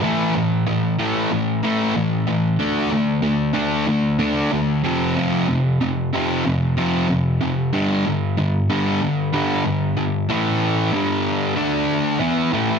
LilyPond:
\new Staff \with { instrumentName = "Distorted electric guitar" } { \clef bass \time 4/4 \key a \minor \tempo 4 = 93 <a, e a>8 <a, e>8 <a, e>8 <a, e a>8 <a, e>8 <a, e a>8 <a, e>8 <a, e>8 | <d a d'>8 <d a>8 <d a>8 <d a d'>8 <d a>8 <d a d'>8 <d a>8 <f, c f>8 | <f, c f>8 <f, c>8 <f, c>8 <f, c f>8 <f, c>8 <f, c f>8 <f, c>8 <f, c>8 | <g, d g>8 <g, d>8 <g, d>8 <g, d g>8 <g, d>8 <g, d g>8 <g, d>8 <g, d>8 |
<a, e a>4 <g, d g>4 <d a d'>4 <e b e'>8 <a, e a>8 | }